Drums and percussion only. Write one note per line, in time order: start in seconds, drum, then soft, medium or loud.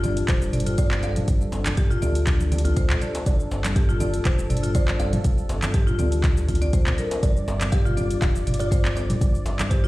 0.03 closed hi-hat soft
0.03 muted conga soft
0.03 djembe tone medium
0.03 low conga medium
0.03 cabasa medium
0.17 closed hi-hat soft
0.17 cabasa medium
0.28 kick loud
0.28 clap medium
0.28 closed hi-hat medium
0.28 cabasa medium
0.42 muted conga medium
0.42 cabasa medium
0.53 closed hi-hat soft
0.53 mid tom medium
0.53 high conga medium
0.53 cabasa medium
0.60 closed hi-hat medium
0.67 closed hi-hat soft
0.67 muted conga soft
0.67 cabasa medium
0.78 kick loud
0.78 closed hi-hat medium
0.78 cabasa medium
0.91 clap loud
0.91 muted conga medium
0.91 djembe bass loud
0.91 cabasa medium
1.02 closed hi-hat soft
1.02 djembe tone loud
1.02 cabasa medium
1.16 closed hi-hat soft
1.16 mid tom medium
1.16 high conga loud
1.16 cabasa medium
1.28 kick loud
1.28 closed hi-hat medium
1.28 muted conga medium
1.28 cabasa medium
1.41 cabasa medium
1.52 closed hi-hat soft
1.52 djembe slap loud
1.52 muted conga soft
1.52 cabasa medium
1.65 clap loud
1.65 closed hi-hat soft
1.65 djembe tone medium
1.65 high conga medium
1.65 low conga medium
1.65 cabasa loud
1.77 kick loud
1.77 closed hi-hat medium
1.77 muted conga medium
1.77 cabasa medium
1.91 mid tom medium
1.91 cabasa medium
2.02 closed hi-hat soft
2.02 muted conga soft
2.02 djembe tone medium
2.02 low conga medium
2.02 cabasa medium
2.15 closed hi-hat soft
2.15 cabasa medium
2.27 kick loud
2.27 clap medium
2.27 closed hi-hat medium
2.27 cabasa medium
2.40 muted conga medium
2.40 high conga medium
2.40 cabasa medium
2.52 closed hi-hat soft
2.52 high conga medium
2.52 low conga loud
2.52 cabasa medium
2.58 closed hi-hat medium
2.65 closed hi-hat soft
2.65 muted conga soft
2.65 djembe bass loud
2.65 cabasa medium
2.77 kick loud
2.77 closed hi-hat medium
2.77 cabasa loud
2.90 clap loud
2.90 mid tom medium
2.90 muted conga medium
2.90 djembe tone medium
2.90 cabasa medium
3.02 closed hi-hat soft
3.02 high conga medium
3.02 cabasa medium
3.15 closed hi-hat soft
3.15 djembe slap loud
3.15 cabasa medium
3.26 kick loud
3.26 closed hi-hat medium
3.26 muted conga medium
3.26 cabasa medium
3.40 cabasa medium
3.51 djembe slap loud
3.51 muted conga soft
3.51 cabasa medium
3.64 clap medium
3.64 closed hi-hat soft
3.64 high conga loud
3.64 djembe tone medium
3.64 cabasa loud
3.76 kick loud
3.76 closed hi-hat medium
3.76 muted conga medium
3.76 cabasa medium
3.89 mid tom medium
3.89 cabasa medium
4.00 closed hi-hat soft
4.00 muted conga soft
4.00 djembe tone medium
4.00 low conga medium
4.00 cabasa loud
4.14 closed hi-hat soft
4.14 cabasa medium
4.25 kick loud
4.25 clap medium
4.25 closed hi-hat medium
4.25 cabasa medium
4.39 muted conga medium
4.39 cabasa loud
4.50 closed hi-hat soft
4.50 mid tom medium
4.50 high conga medium
4.50 cabasa medium
4.57 closed hi-hat medium
4.63 closed hi-hat soft
4.63 muted conga soft
4.63 cabasa medium
4.75 kick loud
4.75 closed hi-hat medium
4.75 cabasa loud
4.88 clap medium
4.88 muted conga medium
4.88 djembe bass medium
4.88 cabasa medium
5.00 closed hi-hat soft
5.00 djembe tone loud
5.00 cabasa medium
5.13 closed hi-hat soft
5.13 mid tom medium
5.13 high conga loud
5.13 cabasa medium
5.24 kick loud
5.24 closed hi-hat medium
5.24 muted conga soft
5.24 cabasa medium
5.38 cabasa medium
5.49 closed hi-hat soft
5.49 djembe slap loud
5.49 muted conga soft
5.49 cabasa medium
5.62 clap medium
5.62 closed hi-hat soft
5.62 djembe tone medium
5.62 high conga medium
5.62 low conga medium
5.62 cabasa loud
5.74 kick loud
5.74 closed hi-hat medium
5.74 muted conga soft
5.74 cabasa medium
5.87 mid tom medium
5.87 cabasa medium
5.99 closed hi-hat soft
5.99 muted conga soft
5.99 djembe tone medium
5.99 low conga medium
5.99 cabasa medium
6.12 closed hi-hat soft
6.12 cabasa medium
6.24 kick loud
6.24 clap medium
6.24 closed hi-hat medium
6.24 cabasa medium
6.37 muted conga soft
6.37 high conga medium
6.37 cabasa loud
6.48 kick medium
6.48 closed hi-hat soft
6.48 high conga medium
6.48 low conga medium
6.48 cabasa medium
6.55 closed hi-hat medium
6.62 closed hi-hat soft
6.62 muted conga soft
6.62 djembe bass medium
6.62 cabasa medium
6.73 kick loud
6.73 closed hi-hat medium
6.73 cabasa loud
6.87 clap medium
6.87 mid tom medium
6.87 muted conga medium
6.87 djembe tone medium
6.87 cabasa medium
6.98 closed hi-hat soft
6.98 high conga medium
6.98 cabasa medium
7.11 closed hi-hat soft
7.11 djembe slap loud
7.11 cabasa medium
7.23 kick loud
7.23 closed hi-hat medium
7.23 muted conga medium
7.23 cabasa medium
7.36 cabasa medium
7.48 muted conga soft
7.48 djembe slap loud
7.48 cabasa medium
7.61 clap medium
7.61 closed hi-hat soft
7.61 djembe tone medium
7.61 high conga medium
7.61 cabasa medium
7.72 kick loud
7.72 closed hi-hat medium
7.72 muted conga soft
7.72 cabasa medium
7.86 mid tom medium
7.86 cabasa medium
7.97 closed hi-hat soft
7.97 muted conga soft
7.97 djembe tone medium
7.97 low conga medium
7.97 cabasa medium
8.11 closed hi-hat soft
8.11 cabasa medium
8.22 kick loud
8.22 clap medium
8.22 closed hi-hat medium
8.22 cabasa medium
8.36 muted conga soft
8.36 cabasa medium
8.47 closed hi-hat soft
8.47 mid tom medium
8.47 high conga medium
8.47 cabasa medium
8.54 closed hi-hat medium
8.60 closed hi-hat soft
8.60 muted conga soft
8.60 cabasa medium
8.72 kick loud
8.72 closed hi-hat medium
8.72 cabasa loud
8.84 clap medium
8.84 muted conga medium
8.84 djembe bass medium
8.84 cabasa medium
8.96 closed hi-hat soft
8.96 djembe tone loud
8.96 cabasa medium
9.10 closed hi-hat soft
9.10 mid tom medium
9.10 high conga loud
9.10 cabasa medium
9.21 kick loud
9.21 closed hi-hat medium
9.21 muted conga medium
9.21 cabasa medium
9.35 cabasa medium
9.46 closed hi-hat soft
9.46 djembe slap loud
9.46 muted conga soft
9.46 cabasa medium
9.59 clap medium
9.59 closed hi-hat soft
9.59 djembe tone medium
9.59 high conga medium
9.59 low conga medium
9.59 cabasa medium
9.71 kick loud
9.71 closed hi-hat medium
9.71 muted conga medium
9.71 cabasa medium
9.84 mid tom medium
9.84 cabasa soft